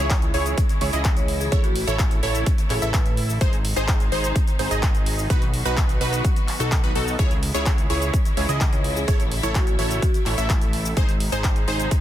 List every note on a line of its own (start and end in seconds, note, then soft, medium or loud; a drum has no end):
0.00 0.32 C#2 loud
0.00 3.37 C#3 medium
0.00 3.37 E3 medium
0.00 1.50 G#3 medium
0.00 0.31 E4 loud
0.00 3.37 E4 medium
0.00 0.31 G#4 medium
0.00 0.31 C#5 loud
0.10 kick loud
0.10 clap loud
0.10 closed hi-hat loud
0.10 cabasa medium
0.22 closed hi-hat soft
0.22 cabasa soft
0.34 0.55 C#2 medium
0.34 0.57 E4 loud
0.34 0.57 G#4 medium
0.34 0.57 C#5 loud
0.34 open hi-hat medium
0.46 closed hi-hat soft
0.46 cabasa medium
0.58 kick loud
0.58 closed hi-hat loud
0.58 cabasa medium
0.69 closed hi-hat soft
0.69 cabasa soft
0.81 0.91 C#2 loud
0.81 0.91 E4 medium
0.81 0.91 G#4 medium
0.81 0.91 C#5 medium
0.81 open hi-hat loud
0.93 1.50 C#2 loud
0.93 1.49 E4 medium
0.93 1.49 G#4 medium
0.93 1.49 D#5 medium
0.93 closed hi-hat soft
0.93 cabasa medium
1.05 kick loud
1.05 clap loud
1.05 closed hi-hat loud
1.05 cabasa medium
1.17 1.24 C#5 medium
1.17 closed hi-hat soft
1.17 cabasa soft
1.28 1.36 C#5 medium
1.28 open hi-hat loud
1.40 1.57 G#4 medium
1.40 cabasa medium
1.52 1.85 A1 loud
1.52 3.39 A3 medium
1.52 1.67 E4 loud
1.52 1.67 A4 medium
1.52 1.67 C#5 loud
1.52 kick loud
1.52 closed hi-hat loud
1.52 cabasa medium
1.64 1.85 F#4 medium
1.64 closed hi-hat soft
1.64 cabasa soft
1.76 open hi-hat loud
1.87 2.21 A1 loud
1.87 2.20 E4 loud
1.87 2.20 A4 medium
1.87 2.20 C#5 loud
1.87 closed hi-hat soft
1.87 cabasa medium
1.99 kick loud
1.99 clap loud
1.99 closed hi-hat medium
1.99 cabasa medium
2.11 closed hi-hat soft
2.11 cabasa soft
2.23 2.44 A1 loud
2.23 2.46 E4 loud
2.23 2.46 A4 medium
2.23 2.46 C#5 loud
2.23 open hi-hat loud
2.35 closed hi-hat soft
2.35 cabasa medium
2.46 kick loud
2.46 closed hi-hat loud
2.46 cabasa medium
2.58 closed hi-hat soft
2.58 cabasa soft
2.70 2.80 A1 loud
2.70 2.80 E4 medium
2.70 2.80 G#4 medium
2.70 2.80 A4 medium
2.70 2.80 C#5 medium
2.70 clap soft
2.70 open hi-hat loud
2.82 3.39 A1 loud
2.82 3.38 E4 medium
2.82 3.38 A4 medium
2.82 3.17 B4 loud
2.82 3.38 E5 medium
2.82 closed hi-hat soft
2.82 cabasa medium
2.94 kick loud
2.94 clap loud
2.94 closed hi-hat medium
2.94 cabasa medium
3.06 closed hi-hat soft
3.06 cabasa soft
3.17 open hi-hat loud
3.30 cabasa medium
3.41 3.74 G#1 loud
3.41 5.28 C3 medium
3.41 7.15 D#3 medium
3.41 5.28 G#3 medium
3.41 3.56 D#4 loud
3.41 5.28 D#4 medium
3.41 3.56 G#4 medium
3.41 3.56 C5 loud
3.41 kick loud
3.41 closed hi-hat medium
3.41 cabasa medium
3.53 closed hi-hat soft
3.53 cabasa soft
3.65 open hi-hat loud
3.76 4.10 G#1 loud
3.76 4.09 D#4 loud
3.76 4.09 G#4 medium
3.76 4.09 C5 loud
3.76 closed hi-hat soft
3.76 cabasa medium
3.88 kick loud
3.88 clap loud
3.88 closed hi-hat medium
3.88 cabasa medium
4.00 closed hi-hat soft
4.00 cabasa soft
4.12 4.33 G#1 loud
4.12 4.35 D#4 loud
4.12 4.35 G#4 medium
4.12 4.35 C5 loud
4.12 open hi-hat loud
4.24 closed hi-hat soft
4.24 cabasa medium
4.36 kick loud
4.36 closed hi-hat medium
4.36 cabasa medium
4.47 closed hi-hat soft
4.47 cabasa soft
4.59 4.69 G#1 loud
4.59 4.69 D#4 medium
4.59 4.69 G#4 medium
4.59 4.69 C5 medium
4.59 open hi-hat loud
4.71 5.28 G#1 loud
4.71 5.27 D#4 medium
4.71 5.27 G#4 medium
4.71 5.27 D#5 medium
4.71 closed hi-hat soft
4.71 cabasa medium
4.83 kick loud
4.83 clap loud
4.83 closed hi-hat medium
4.83 cabasa medium
4.95 closed hi-hat soft
4.95 cabasa soft
5.06 open hi-hat loud
5.19 cabasa medium
5.30 7.17 F#3 medium
5.30 7.17 B3 medium
5.30 5.45 D#4 loud
5.30 7.17 F#4 medium
5.30 5.45 F#4 medium
5.30 5.45 B4 loud
5.30 kick loud
5.30 closed hi-hat medium
5.30 cabasa medium
5.42 closed hi-hat soft
5.42 cabasa soft
5.54 open hi-hat loud
5.65 5.99 B1 loud
5.65 5.98 D#4 loud
5.65 5.98 F#4 medium
5.65 5.98 B4 loud
5.65 closed hi-hat soft
5.65 cabasa medium
5.77 kick loud
5.77 clap loud
5.77 closed hi-hat medium
5.77 cabasa medium
5.89 closed hi-hat soft
5.89 cabasa soft
6.01 6.22 B1 loud
6.01 6.24 D#4 loud
6.01 6.24 F#4 medium
6.01 6.24 B4 loud
6.01 open hi-hat medium
6.13 closed hi-hat soft
6.13 cabasa medium
6.25 kick loud
6.25 closed hi-hat medium
6.25 cabasa medium
6.36 closed hi-hat soft
6.36 cabasa soft
6.48 clap soft
6.48 open hi-hat loud
6.60 6.81 B1 loud
6.60 6.81 D#4 medium
6.60 6.81 F#4 medium
6.60 6.81 A4 medium
6.60 closed hi-hat soft
6.60 cabasa medium
6.72 kick loud
6.72 clap loud
6.72 closed hi-hat medium
6.72 cabasa medium
6.84 6.93 B1 loud
6.84 6.93 D#4 medium
6.84 6.93 F#4 medium
6.84 6.93 B4 medium
6.84 closed hi-hat soft
6.84 cabasa soft
6.95 7.17 B1 loud
6.95 7.16 D#4 medium
6.95 7.16 F#4 medium
6.95 7.16 A4 loud
6.95 7.16 A4 medium
6.95 open hi-hat loud
7.08 cabasa medium
7.19 7.52 C#2 loud
7.19 10.93 C#3 medium
7.19 10.93 E3 medium
7.19 9.06 G#3 medium
7.19 10.93 E4 medium
7.19 7.34 E4 loud
7.19 7.34 G#4 medium
7.19 7.34 C#5 loud
7.19 kick loud
7.19 closed hi-hat medium
7.19 cabasa medium
7.31 closed hi-hat soft
7.31 cabasa soft
7.43 open hi-hat loud
7.54 7.88 C#2 loud
7.54 7.87 E4 loud
7.54 7.87 G#4 medium
7.54 7.87 C#5 loud
7.54 closed hi-hat soft
7.54 cabasa medium
7.66 kick loud
7.66 clap loud
7.66 closed hi-hat medium
7.66 cabasa medium
7.78 closed hi-hat soft
7.78 cabasa soft
7.90 8.11 C#2 loud
7.90 8.13 E4 loud
7.90 8.13 G#4 medium
7.90 8.13 C#5 loud
7.90 open hi-hat medium
8.02 closed hi-hat soft
8.02 cabasa medium
8.14 kick loud
8.14 closed hi-hat medium
8.14 cabasa medium
8.25 closed hi-hat soft
8.25 cabasa soft
8.37 8.47 C#2 loud
8.37 8.47 E4 medium
8.37 8.47 G#4 medium
8.37 8.47 C#5 medium
8.37 open hi-hat loud
8.49 9.06 C#2 loud
8.49 9.05 E4 medium
8.49 9.05 G#4 medium
8.49 9.05 D#5 medium
8.49 closed hi-hat soft
8.49 cabasa medium
8.61 kick loud
8.61 clap loud
8.61 closed hi-hat medium
8.61 cabasa medium
8.73 8.80 C#5 medium
8.73 closed hi-hat soft
8.73 cabasa soft
8.84 8.92 C#5 medium
8.84 open hi-hat loud
8.96 9.13 G#4 medium
8.96 cabasa medium
9.08 9.41 A1 loud
9.08 10.95 A3 medium
9.08 9.23 E4 loud
9.08 9.23 A4 medium
9.08 9.23 C#5 loud
9.08 kick loud
9.08 closed hi-hat medium
9.08 cabasa medium
9.20 closed hi-hat soft
9.20 cabasa soft
9.32 open hi-hat loud
9.43 9.76 A1 loud
9.43 9.76 E4 loud
9.43 9.76 A4 medium
9.43 9.76 C#5 loud
9.43 closed hi-hat soft
9.43 cabasa medium
9.55 9.88 F#4 medium
9.55 kick loud
9.55 clap loud
9.55 closed hi-hat medium
9.55 cabasa medium
9.67 closed hi-hat soft
9.67 cabasa soft
9.79 10.00 A1 loud
9.79 10.02 E4 loud
9.79 10.02 A4 medium
9.79 10.02 C#5 loud
9.79 open hi-hat medium
9.90 9.98 F#4 medium
9.90 closed hi-hat soft
9.90 cabasa medium
10.02 10.10 F#4 medium
10.02 kick loud
10.02 closed hi-hat medium
10.02 cabasa medium
10.14 closed hi-hat soft
10.14 cabasa soft
10.26 10.36 A1 loud
10.26 10.36 E4 medium
10.26 10.36 A4 medium
10.26 10.36 C#5 medium
10.26 clap soft
10.26 open hi-hat loud
10.38 10.95 A1 loud
10.38 10.94 E4 medium
10.38 10.94 A4 medium
10.38 10.94 E5 medium
10.38 closed hi-hat soft
10.38 cabasa medium
10.50 kick loud
10.50 clap loud
10.50 closed hi-hat medium
10.50 cabasa medium
10.61 closed hi-hat soft
10.61 cabasa soft
10.73 open hi-hat medium
10.85 cabasa medium
10.97 12.01 C3 medium
10.97 12.01 D#3 medium
10.97 12.01 G#3 medium
10.97 12.01 D#4 medium
10.97 11.11 D#4 loud
10.97 11.11 G#4 medium
10.97 11.11 C5 loud
10.97 kick loud
10.97 closed hi-hat loud
10.97 cabasa medium
11.09 closed hi-hat soft
11.09 cabasa soft
11.20 open hi-hat loud
11.32 11.65 G#1 loud
11.32 11.65 D#4 loud
11.32 11.65 G#4 medium
11.32 11.65 C5 loud
11.32 closed hi-hat soft
11.32 cabasa medium
11.44 kick loud
11.44 clap loud
11.44 closed hi-hat medium
11.44 cabasa medium
11.56 closed hi-hat soft
11.56 cabasa soft
11.68 11.89 G#1 loud
11.68 11.91 D#4 loud
11.68 11.91 G#4 medium
11.68 11.91 C5 loud
11.68 open hi-hat medium
11.80 closed hi-hat soft
11.80 cabasa medium
11.91 kick loud
11.91 closed hi-hat loud
11.91 cabasa medium